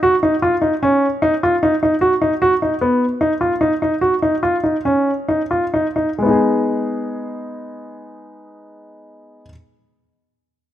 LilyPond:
\new Staff \with { instrumentName = "Grand piano" } { \time 5/4 \key gis \dorian \tempo 4 = 140 fis'8 dis'8 eis'8 dis'8 cis'4 dis'8 eis'8 dis'8 dis'8 | fis'8 dis'8 fis'8 dis'8 b4 dis'8 eis'8 dis'8 dis'8 | fis'8 dis'8 eis'8 dis'8 cis'4 dis'8 eis'8 dis'8 dis'8 | <gis b dis' gis'>1~ <gis b dis' gis'>4~ |
<gis b dis' gis'>1~ <gis b dis' gis'>4 | }